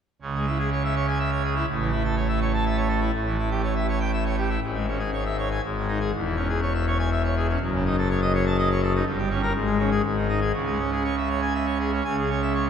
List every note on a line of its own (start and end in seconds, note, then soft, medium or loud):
0.22 1.64 C#2 medium
0.22 1.64 C#3 medium
0.35 0.46 G#3 medium
0.47 0.58 E4 medium
0.59 0.70 G#4 medium
0.72 0.83 C#5 medium
0.84 0.95 E5 medium
0.96 1.06 C#5 medium
1.08 1.18 G#5 medium
1.19 1.30 E5 medium
1.32 1.43 C#5 medium
1.44 1.54 G#4 medium
1.55 1.66 E4 medium
1.69 3.10 A1 medium
1.69 3.10 A2 medium
1.80 1.91 E3 medium
1.92 2.03 E4 medium
2.04 2.15 A4 medium
2.17 2.27 C#5 medium
2.28 2.39 E5 medium
2.42 2.52 C#5 medium
2.53 2.64 A5 loud
2.66 2.76 E5 medium
2.77 2.88 C#5 medium
2.88 3.00 A4 medium
3.01 3.11 E4 medium
3.12 4.57 A1 medium
3.12 4.57 A2 medium
3.25 3.37 E3 medium
3.39 3.49 E4 medium
3.51 3.62 G4 medium
3.63 3.74 C#5 medium
3.76 3.86 E5 medium
3.89 3.99 C#5 medium
4.00 4.11 G5 medium
4.13 4.24 E5 medium
4.25 4.36 C#5 medium
4.37 4.48 G4 medium
4.49 4.60 E4 medium
4.63 5.60 G#1 medium
4.63 5.60 G#2 medium
4.75 4.86 G#3 medium
4.88 4.99 C#4 medium
4.99 5.10 G#4 medium
5.13 5.24 C#5 medium
5.25 5.36 E5 medium
5.38 5.49 C#5 medium
5.51 5.61 G#5 medium
5.64 6.12 G#1 medium
5.64 6.11 G#2 medium
5.76 5.87 D#3 medium
5.88 5.99 D#4 medium
6.00 6.11 G#4 medium
6.13 7.57 E1 medium
6.13 7.57 E2 medium
6.24 6.35 E3 medium
6.36 6.48 C#4 medium
6.49 6.60 G#4 medium
6.62 6.73 C#5 medium
6.74 6.85 E5 medium
6.87 6.98 C#5 medium
6.99 7.10 G#5 medium
7.12 7.22 E5 medium
7.24 7.35 C#5 medium
7.36 7.47 G#4 medium
7.49 7.59 C#4 medium
7.61 9.02 F#1 medium
7.61 9.02 F#2 medium
7.73 7.84 C#3 medium
7.86 7.96 D#4 medium
7.98 8.08 A4 medium
8.10 8.20 C#5 medium
8.22 8.32 D#5 medium
8.35 8.45 C#5 medium
8.46 8.57 A5 loud
8.58 8.69 D#5 medium
8.71 8.81 C#5 medium
8.83 8.93 A4 medium
8.95 9.05 D#4 medium
9.05 9.53 G1 medium
9.05 9.53 G2 medium
9.18 9.28 G3 medium
9.30 9.41 C#4 medium
9.42 9.53 A#4 medium
9.54 10.01 G#1 loud
9.54 10.01 G#2 medium
9.66 9.77 G#3 medium
9.79 9.90 C#4 medium
9.91 10.02 G#4 medium
10.03 10.52 G#1 medium
10.03 10.52 G#2 medium
10.16 10.27 D#3 medium
10.29 10.40 D#4 medium
10.41 10.52 G#4 medium
10.53 12.01 C#2 medium
10.53 12.01 C#3 medium
10.66 10.78 G#3 medium
10.79 10.90 C#4 medium
10.91 11.03 G#4 medium
11.04 11.15 C#5 medium
11.17 11.29 E5 medium
11.29 11.41 C#5 medium
11.42 11.53 G#5 medium
11.54 11.66 E5 medium
11.66 11.78 C#5 medium
11.80 11.91 G#4 medium
11.93 12.03 C#4 medium
12.05 12.70 C#2 medium
12.05 12.70 C#3 medium
12.05 12.16 G#5 medium
12.18 12.29 G#4 medium
12.30 12.41 C#5 medium
12.42 12.53 E5 medium
12.54 12.66 C#5 medium